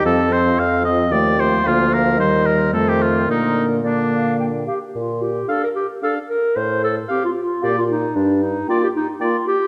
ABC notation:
X:1
M:3/4
L:1/16
Q:1/4=112
K:Bb
V:1 name="Flute"
e6 z2 g4 | f4 e4 c4 | B4 d2 f2 g2 f2 | z4 f4 f4 |
z4 f4 f4 | z4 g4 g4 |]
V:2 name="Oboe"
A2 c2 f2 e2 d2 c2 | F2 B2 c2 B2 A G F2 | E3 z D4 z4 | z4 f4 f4 |
z4 f4 d4 | z4 d4 d4 |]
V:3 name="Clarinet"
C2 C4 C2 A,2 A,2 | B,4 G,4 A,4 | B,4 B,6 G2 | F2 G2 A B G2 A2 B2 |
c2 A2 G F F2 G F E2 | D2 E2 F G E2 F2 G2 |]
V:4 name="French horn" clef=bass
F,2 F,4 F,2 F,2 F,2 | F,4 E,4 E,4 | D,4 D,6 z2 | z4 D4 D4 |
z4 C4 B,4 | z4 B,4 B,4 |]
V:5 name="Bassoon" clef=bass
F,,4 F,,4 E,,4 | D,,4 E,,4 F,,4 | B,,8- B,,2 z2 | B,,4 z8 |
A,,4 z4 B,,4 | G,,4 z8 |]